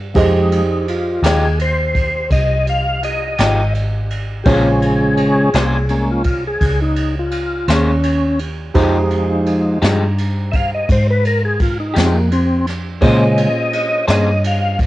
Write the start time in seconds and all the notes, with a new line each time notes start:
Already playing: G2 G4 G#4 C5
0.14 F2 F3 G#3 D#4 G4 G#4 C5 D#5, kick, ride
0.52 D#4, ride
0.88 F4, ride
1.22 D#2 F3 G#3 D#4 G4 G#4, snare, ride
1.59 C5, ride
1.95 kick, ride
2.30 C2 D#5, kick, ride
2.67 F5, ride
3.03 D#5, ride
3.38 G#1 F3 G#3 D#4 G4, snare, ride
3.74 ride
4.10 ride
4.44 A#1 C#3 G#3 A#3 C#4 F4 G4 G#4 C5 C#5, kick, ride
4.48 G#4 C5
4.82 ride
5.17 ride
5.53 C2 A#3 C#4 G#4 C5, snare, ride
5.89 G#3 A#3 C#4, ride
6.11 F4
6.24 kick, ride
6.47 G#4
6.61 C#2, kick, ride
6.82 D#4
6.96 ride
7.19 F4
7.31 ride
7.68 D#2 A#3 C#4 G#4 C5, snare, ride
8.03 ride
8.39 ride
8.74 F2 F3 G#3 D#4 G4 G#4 C5, kick, ride
9.11 ride
9.46 ride
9.82 G2 F3 G#3 D#4 G4, snare, ride
10.18 ride
10.52 E5 F5, kick, ride
10.74 D#5
10.89 G#2 C5, kick, ride
11.10 B4
11.25 A#4, ride
11.45 G#4
11.60 F4, kick, ride
11.80 D#4
11.94 F2 F3 G#3 D#4 G4, ride
11.98 C4, snare
12.14 A#3
12.31 C4, ride
12.67 snare, ride
13.01 A#2 C#3 G#3 A#3 C#4 F4 G#4 C5 D#5, kick, ride
13.38 ride
13.73 ride
14.08 G2 A#3 C#4 G#4 C5 D#5, snare, ride
14.44 F5, ride
14.79 kick, ride